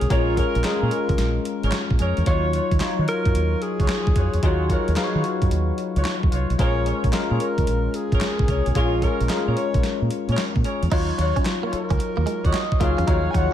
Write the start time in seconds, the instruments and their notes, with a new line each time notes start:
Already playing: tine electric piano G#3 C#4 F4 C#5, alto saxophone G#4
0.01 fingered electric bass B1, closed hi-hat
0.09 fingered electric bass A#1, tine electric piano G#3 C#4 F4 A#4, alto saxophone F4, horn section G#4 A#4 C#5, kick, closed hi-hat
0.37 horn section G#4 A#4 C#5, alto saxophone A#4, kick, closed hi-hat
0.55 fingered electric bass A#1, closed hi-hat
0.64 tine electric piano G#3 C#4 F4 A#4, alto saxophone G#4, snare, clap, closed hi-hat
0.82 fingered electric bass A#2, horn section G#4 A#4 C#5
0.91 alto saxophone A#4, closed hi-hat
1.09 fingered electric bass C#2, kick, closed hi-hat
1.18 fingered electric bass A#1, snare, closed hi-hat
1.45 closed hi-hat
1.63 fingered electric bass G#1, horn section G#4 A#4 C#5, closed hi-hat
1.72 snare, clap, closed hi-hat
1.91 fingered electric bass A#1, kick
1.99 fingered electric bass F2, horn section G#4 A#4 C#5, closed hi-hat
2.17 fingered electric bass E2, closed hi-hat
2.26 fingered electric bass D#2, tine electric piano F#3 D#4 F4 C#5, horn section F4 F#4 C#5, alto saxophone C#5, kick, closed hi-hat
2.53 horn section F4 F#4 C#5, closed hi-hat
2.71 fingered electric bass D#2, kick, closed hi-hat
2.80 tine electric piano F#3 D#4 F4 C#5, muted fingered electric bass stroke, snare, clap, closed hi-hat
2.98 fingered electric bass D#3, horn section F4 F#4 C#5
3.08 alto saxophone A#4, closed hi-hat
3.26 fingered electric bass F#2, kick, closed hi-hat
3.35 fingered electric bass D#2, closed hi-hat
3.62 alto saxophone G#4, closed hi-hat
3.79 fingered electric bass C#2, horn section F4 F#4 C#5, kick, closed hi-hat
3.88 snare, clap, closed hi-hat
4.07 fingered electric bass D#2, kick
4.15 fingered electric bass F2, horn section F4 F#4 C#5, kick, closed hi-hat
4.34 fingered electric bass E2, closed hi-hat
4.42 fingered electric bass D#2, tine electric piano F#3 D#4 F4 G#4, horn section F4 F#4 C#5, alto saxophone F#4, kick, closed hi-hat
4.69 horn section F4 F#4 C#5, alto saxophone A#4, kick, closed hi-hat
4.88 fingered electric bass D#2, closed hi-hat
4.96 tine electric piano F#3 D#4 B4 F5, alto saxophone G#4, snare, clap, closed hi-hat
5.04 tine electric piano C#5
5.14 fingered electric bass D#3, horn section F4 F#4 C#5
5.24 alto saxophone F#4, closed hi-hat
5.42 fingered electric bass F#2, kick, closed hi-hat
5.51 fingered electric bass D#2, closed hi-hat
5.78 closed hi-hat
5.96 fingered electric bass C#2, horn section F4 F#4 C#5, closed hi-hat
6.05 snare, clap, closed hi-hat
6.23 fingered electric bass D#2, kick
6.31 fingered electric bass C2, horn section F4 F#4 C#5, closed hi-hat
6.50 fingered electric bass B1, closed hi-hat
6.58 fingered electric bass A#1, tine electric piano G#3 C#4 F4 A#4, horn section G#4 A#4 C#5, alto saxophone C#5, kick, closed hi-hat
6.86 horn section G#4 A#4 C#5, closed hi-hat
7.04 fingered electric bass A#1, kick, closed hi-hat
7.12 tine electric piano G#3 C#4 F4 A#4, snare, clap, closed hi-hat
7.31 fingered electric bass A#2, horn section G#4 A#4 C#5
7.40 alto saxophone A#4, closed hi-hat
7.58 fingered electric bass C#2, kick, closed hi-hat
7.67 fingered electric bass A#1, closed hi-hat
7.94 alto saxophone G#4, closed hi-hat
8.12 fingered electric bass G#1, horn section G#4 A#4 C#5, kick, closed hi-hat
8.21 snare, clap, closed hi-hat
8.39 fingered electric bass A#1, kick
8.48 fingered electric bass C2, horn section G#4 A#4 C#5, kick, closed hi-hat
8.66 fingered electric bass B1, closed hi-hat
8.75 fingered electric bass A#1, tine electric piano G#3 C#4 F4 G#4, alto saxophone F4, horn section G#4 A#4 C#5, kick, closed hi-hat
9.02 horn section G#4 A#4 C#5, alto saxophone A#4, kick, closed hi-hat
9.21 fingered electric bass A#1, closed hi-hat
9.29 tine electric piano G#3 C#4 F4 A#4, alto saxophone G#4, snare, clap, closed hi-hat
9.47 fingered electric bass A#2, horn section G#4 A#4 C#5
9.57 alto saxophone C#5, closed hi-hat
9.74 fingered electric bass A#1, kick, closed hi-hat
9.83 snare, closed hi-hat
10.02 fingered electric bass A#2
10.11 closed hi-hat
10.28 fingered electric bass A#2, horn section G#4 A#4 C#5, closed hi-hat
10.37 snare, clap, closed hi-hat
10.56 fingered electric bass A#2, kick
10.64 horn section G#4 A#4 C#5, closed hi-hat
10.82 fingered electric bass E2, closed hi-hat
10.91 fingered electric bass D#2, tine electric piano F#3 D#4 F4 C#5, clean electric guitar D#4, horn section F4 F#4 C#5, kick, closed hi-hat, crash
11.18 fingered electric bass D#2, horn section F4 F#4 C#5, muted clean electric guitar stroke, closed hi-hat
11.36 clean electric guitar C#4, kick, closed hi-hat
11.45 snare, clap, closed hi-hat
11.63 clean electric guitar A#3, horn section F4 F#4 C#5
11.72 alto saxophone A#4, muted clean electric guitar stroke, muted fingered electric bass stroke, closed hi-hat
11.90 fingered electric bass C#2, clean electric guitar C#4, kick, closed hi-hat
11.99 muted clean electric guitar stroke, closed hi-hat
12.17 fingered electric bass D#2, clean electric guitar A#3
12.26 clean electric guitar G#3, closed hi-hat
12.44 fingered electric bass D#2, horn section F4 F#4 C#5, alto saxophone D#5, kick, closed hi-hat
12.53 muted clean electric guitar stroke, snare, clap, closed hi-hat
12.72 kick
12.80 fingered electric bass C#2, tine electric piano F#3 D#4 F4 G#4, clean electric guitar A#3, horn section F4 F#4 C#5, alto saxophone F5, kick, closed hi-hat
12.98 fingered electric bass E2, clean electric guitar C#4, closed hi-hat
13.07 fingered electric bass D#2, tine electric piano F3 F#3 D#4 C#5, clean electric guitar D#4, horn section F4 F#4 C#5, kick, closed hi-hat
13.31 fingered electric bass D#2, horn section F4 F#4 C#5, alto saxophone G#5, muted clean electric guitar stroke, kick, closed hi-hat
13.36 alto saxophone F#5